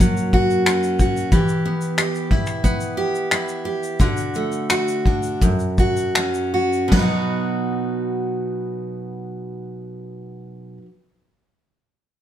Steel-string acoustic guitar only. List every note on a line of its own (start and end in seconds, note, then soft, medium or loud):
0.00 1.32 F#2 medium
0.00 1.32 F#3 medium
0.00 1.38 A#3 medium
0.00 0.65 C#4 soft
0.00 0.32 F#4 medium
0.34 0.99 F#4 medium
0.67 1.39 C#4 medium
1.00 1.32 F#4 medium
1.32 4.00 E3 medium
1.32 1.97 G4 medium
1.65 2.63 B3 soft
1.98 2.96 G4 medium
2.31 3.31 E4 medium
2.64 4.07 B3 medium
2.97 3.64 G4 medium
3.32 4.07 E4 medium
3.65 4.00 G4 medium
4.00 5.49 D3 medium
4.00 4.70 F#4 medium
4.36 5.50 A3 medium
4.70 5.79 F#4 medium
5.07 5.50 D4 medium
5.42 7.00 F#2 medium
5.79 6.53 F#4 medium
6.17 6.99 C#4 medium
6.54 7.02 F#4 medium
6.88 10.77 B2 medium
6.92 10.81 F#3 medium
6.92 10.85 B3 medium
6.99 10.88 D#4 medium
6.99 10.92 F#4 medium